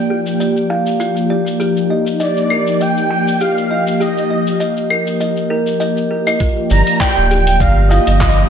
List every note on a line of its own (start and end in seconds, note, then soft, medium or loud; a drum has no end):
0.00 6.36 F3 medium
0.00 6.36 A#3 medium
0.00 1.56 F4 medium
0.00 6.36 G4 medium
0.10 0.39 G4 medium
0.27 shaker medium
0.40 0.56 D5 medium
0.40 shaker soft
0.57 shaker soft
0.70 0.86 F5 medium
0.87 shaker medium
1.00 1.16 F4 medium
1.00 shaker soft
1.17 shaker soft
1.30 1.59 D5 medium
1.47 shaker medium
1.60 3.98 D#4 medium
1.60 1.76 G4 medium
1.60 shaker soft
1.77 shaker soft
1.90 2.19 D#5 medium
2.07 shaker medium
2.20 2.83 D5 medium
2.20 2.36 D#5 medium
2.20 shaker soft
2.37 shaker soft
2.50 2.79 A#4 medium
2.50 claves medium
2.67 shaker medium
2.81 2.96 D#5 medium
2.81 3.10 G5 loud
2.81 shaker soft
2.98 shaker soft
3.10 3.26 G5 medium
3.10 3.43 G5 loud
3.28 shaker medium
3.41 3.56 G4 medium
3.41 4.03 F5 loud
3.41 shaker soft
3.58 shaker soft
3.71 3.99 D#5 medium
3.88 shaker medium
4.00 4.16 G4 medium
4.00 4.61 D#5 medium
4.00 shaker soft
4.18 shaker soft
4.30 4.59 D#5 medium
4.47 shaker medium
4.60 4.76 D#5 medium
4.60 shaker soft
4.77 shaker soft
4.90 5.19 A#4 medium
4.90 claves medium
5.07 shaker medium
5.21 5.36 D#5 medium
5.21 shaker soft
5.37 shaker soft
5.50 5.60 A#4 loud
5.67 shaker medium
5.80 5.96 D#5 medium
5.80 shaker soft
5.97 shaker soft
6.11 6.26 A#4 medium
6.27 6.39 D#5 medium
6.27 claves medium
6.27 shaker medium
6.40 8.49 F3 medium
6.40 8.49 A#3 medium
6.40 6.56 F4 medium
6.40 8.49 F4 medium
6.40 8.49 G4 medium
6.40 kick loud
6.40 closed hi-hat soft
6.40 shaker soft
6.71 6.82 G1 loud
6.71 6.99 D5 medium
6.71 7.02 A#5 loud
6.71 shaker medium
6.87 closed hi-hat medium
6.87 shaker soft
7.00 7.16 D5 loud
7.00 7.62 G5 loud
7.00 kick loud
7.00 clap loud
7.00 closed hi-hat soft
7.00 shaker soft
7.17 7.62 D1 loud
7.31 7.59 G4 medium
7.31 shaker medium
7.47 closed hi-hat medium
7.47 shaker soft
7.60 7.99 G1 medium
7.60 7.76 D5 medium
7.60 7.89 F5 loud
7.60 kick loud
7.60 closed hi-hat soft
7.60 shaker soft
7.89 8.49 D#5 loud
7.89 8.06 F5 loud
7.89 shaker medium
8.07 8.44 G1 medium
8.07 closed hi-hat medium
8.07 shaker soft
8.20 8.36 F4 medium
8.20 kick loud
8.20 clap loud
8.20 closed hi-hat soft
8.20 shaker soft